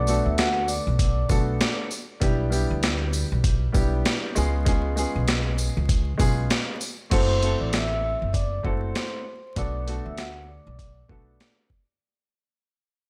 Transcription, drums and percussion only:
0.07 tambourine soft
0.07 shaker medium
0.38 snare loud
0.38 closed hi-hat medium
0.68 tambourine medium
0.68 shaker soft
0.99 kick medium
0.99 closed hi-hat loud
1.29 kick loud
1.29 tambourine medium
1.29 shaker medium
1.61 snare loud
1.61 closed hi-hat medium
1.91 tambourine medium
1.91 shaker medium
2.22 kick loud
2.22 closed hi-hat medium
2.52 tambourine soft
2.52 shaker medium
2.83 snare loud
2.83 closed hi-hat medium
3.13 tambourine medium
3.13 shaker soft
3.44 kick medium
3.44 closed hi-hat medium
3.74 kick loud
3.74 tambourine medium
3.74 shaker medium
4.05 snare loud
4.05 closed hi-hat medium
4.36 tambourine medium
4.36 shaker medium
4.66 kick loud
4.66 closed hi-hat medium
4.97 tambourine soft
4.97 shaker medium
5.28 snare loud
5.28 closed hi-hat medium
5.58 tambourine medium
5.58 shaker soft
5.89 kick medium
5.89 closed hi-hat loud
6.19 kick loud
6.19 closed hi-hat medium
6.19 tambourine medium
6.19 shaker medium
6.50 snare loud
6.50 closed hi-hat medium
6.81 tambourine medium
6.81 shaker medium
7.11 kick loud
7.11 closed hi-hat medium
7.11 crash medium
7.43 closed hi-hat medium
7.73 snare loud
7.73 closed hi-hat medium
8.34 kick medium
8.34 closed hi-hat medium
8.65 kick loud
8.95 snare loud
8.95 closed hi-hat medium
9.56 kick loud
9.56 closed hi-hat medium
9.88 closed hi-hat medium
10.18 snare loud
10.18 closed hi-hat medium
10.79 kick medium
10.79 closed hi-hat medium
11.09 kick loud
11.40 snare loud
11.40 closed hi-hat medium
11.70 kick medium

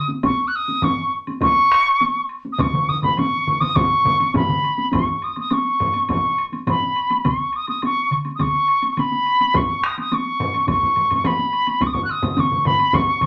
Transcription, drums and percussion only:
0.08 taiko high medium
0.23 taiko loud
0.23 taiko high medium
0.23 high woodblock medium
0.68 taiko high medium
0.82 taiko low-mid medium
0.82 taiko high medium
0.82 high woodblock soft
1.27 taiko high soft
1.27 high woodblock soft
1.41 taiko loud
1.41 taiko low-mid medium
1.41 taiko high medium
1.41 high woodblock medium
1.72 taiko rim medium
1.86 high woodblock soft
2.00 taiko high medium
2.00 high woodblock soft
2.29 high woodblock soft
2.45 taiko high soft
2.58 taiko loud
2.58 taiko low-mid medium
2.58 taiko mid medium
2.58 taiko high medium
2.58 high woodblock medium
2.73 taiko low-mid medium
2.73 taiko mid medium
2.88 taiko low-mid medium
2.88 taiko mid medium
3.02 taiko low-mid medium
3.02 taiko mid medium
3.02 taiko high soft
3.02 high woodblock soft
3.17 taiko low-mid medium
3.17 taiko mid medium
3.17 taiko high medium
3.17 high woodblock soft
3.47 taiko low-mid medium
3.47 taiko mid medium
3.61 taiko low-mid medium
3.61 taiko mid medium
3.61 taiko high soft
3.61 high woodblock soft
3.76 taiko loud
3.76 taiko low-mid medium
3.76 taiko mid medium
3.76 taiko high medium
3.76 high woodblock medium
4.04 taiko low-mid medium
4.04 taiko mid medium
4.04 taiko high medium
4.20 taiko high soft
4.20 high woodblock soft
4.34 taiko low-mid loud
4.34 taiko mid medium
4.34 taiko high medium
4.34 high woodblock soft
4.49 taiko low-mid medium
4.49 taiko mid medium
4.64 high woodblock soft
4.78 taiko high medium
4.93 taiko medium
4.93 taiko low-mid medium
4.93 taiko high medium
4.93 high woodblock medium
5.22 high woodblock soft
5.36 taiko high soft
5.36 high woodblock soft
5.50 taiko high medium
5.50 high woodblock soft
5.80 taiko low-mid medium
5.80 high woodblock soft
5.94 taiko high soft
5.94 high woodblock soft
6.09 taiko medium
6.09 taiko low-mid medium
6.09 taiko high medium
6.09 high woodblock soft
6.38 high woodblock soft
6.52 taiko high soft
6.52 high woodblock soft
6.67 taiko low-mid medium
6.67 taiko high medium
6.67 high woodblock medium
6.81 taiko high soft
6.96 high woodblock soft
7.10 taiko high soft
7.10 high woodblock soft
7.25 taiko medium
7.25 taiko mid medium
7.25 taiko high medium
7.25 high woodblock soft
7.53 high woodblock soft
7.67 taiko high soft
7.67 high woodblock soft
7.82 taiko high medium
7.82 high woodblock soft
8.11 taiko mid medium
8.11 high woodblock soft
8.25 taiko high soft
8.25 high woodblock soft
8.39 taiko medium
8.39 taiko mid medium
8.39 taiko high medium
8.39 high woodblock soft
8.68 high woodblock soft
8.82 taiko high soft
8.82 high woodblock soft
8.97 taiko mid medium
8.97 taiko high medium
8.97 high woodblock soft
9.12 taiko high soft
9.26 high woodblock soft
9.41 taiko high soft
9.41 high woodblock soft
9.54 taiko loud
9.54 taiko low-mid medium
9.54 taiko high medium
9.54 high woodblock soft
9.84 taiko rim medium
9.84 high woodblock soft
9.98 taiko high soft
9.98 high woodblock soft
10.12 taiko high medium
10.12 high woodblock soft
10.40 taiko low-mid medium
10.40 high woodblock soft
10.54 taiko high soft
10.54 high woodblock soft
10.68 taiko medium
10.68 taiko low-mid medium
10.68 taiko high medium
10.68 high woodblock medium
10.83 taiko low-mid medium
10.96 taiko low-mid medium
10.96 high woodblock soft
11.11 taiko low-mid medium
11.11 taiko high soft
11.11 high woodblock soft
11.24 taiko low-mid medium
11.24 taiko high medium
11.24 high woodblock medium
11.39 taiko high soft
11.53 high woodblock soft
11.67 taiko high soft
11.67 high woodblock soft
11.81 taiko medium
11.81 taiko high medium
11.81 high woodblock medium
11.94 taiko low-mid medium
11.94 taiko mid medium
12.09 high woodblock soft
12.23 taiko low-mid medium
12.23 taiko mid medium
12.23 taiko high medium
12.23 high woodblock soft
12.37 taiko low-mid medium
12.37 taiko mid medium
12.37 taiko high medium
12.37 high woodblock soft
12.52 taiko low-mid medium
12.52 taiko mid medium
12.65 taiko low-mid medium
12.65 taiko mid medium
12.65 high woodblock soft
12.79 taiko high soft
12.79 high woodblock soft
12.93 taiko medium
12.93 taiko low-mid medium
12.93 taiko mid medium
12.93 taiko high medium
12.93 high woodblock medium
13.21 taiko low-mid medium
13.21 taiko mid medium
13.21 high woodblock soft

